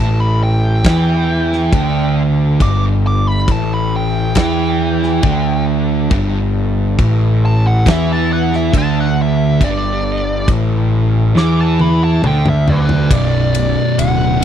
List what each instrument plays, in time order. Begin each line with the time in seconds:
Already playing: picked electric bass A1, distorted electric guitar A2
0.00 lead electric guitar A5
0.20 lead electric guitar B5
0.43 lead electric guitar G5
0.85 picked electric bass E2, distorted electric guitar E3, kick, snare, crash
1.52 snare
1.73 picked electric bass D2, distorted electric guitar D3, kick, crash
2.60 picked electric bass G1, distorted electric guitar G2, lead electric guitar D6, kick, crash
3.07 lead electric guitar D6
3.28 lead electric guitar B5
3.48 picked electric bass A1, distorted electric guitar A2, lead electric guitar A5, kick, crash
3.74 lead electric guitar B5
3.96 lead electric guitar G5
4.35 picked electric bass E2, distorted electric guitar E3, kick, snare, crash
5.03 snare
5.23 picked electric bass D2, distorted electric guitar D3, kick, crash
6.11 picked electric bass G1, distorted electric guitar G2, kick, crash
6.99 picked electric bass A1, distorted electric guitar A2, kick, crash
7.45 lead electric guitar A5
7.67 lead electric guitar F#5
7.86 picked electric bass E2, distorted electric guitar E3, kick, snare, crash
7.90 lead electric guitar E5
8.12 lead electric guitar A5
8.33 lead electric guitar F#5
8.53 lead electric guitar E5, snare
8.73 picked electric bass D2, distorted electric guitar D3, kick, crash
8.78 lead electric guitar A5
9.00 lead electric guitar F#5
9.21 lead electric guitar E5
9.61 picked electric bass G1, distorted electric guitar G2, lead electric guitar D5, kick, crash
10.48 picked electric bass A1, distorted electric guitar A2, kick, crash
11.35 picked electric bass E2, distorted electric guitar E3, lead electric guitar D6, snare
11.61 lead electric guitar A5
11.80 lead electric guitar B5, high tom
12.04 lead electric guitar A5
12.23 picked electric bass D2, distorted electric guitar D3, mid tom
12.27 lead electric guitar G5
12.46 lead electric guitar E5, mid tom
12.68 lead electric guitar B4 D5, floor tom
12.89 floor tom
13.09 picked electric bass B0, distorted electric guitar B1 F#2 B2, kick, ride
13.55 ride
13.98 picked electric bass D1, lead electric guitar F#5, ride
14.41 distorted electric guitar B2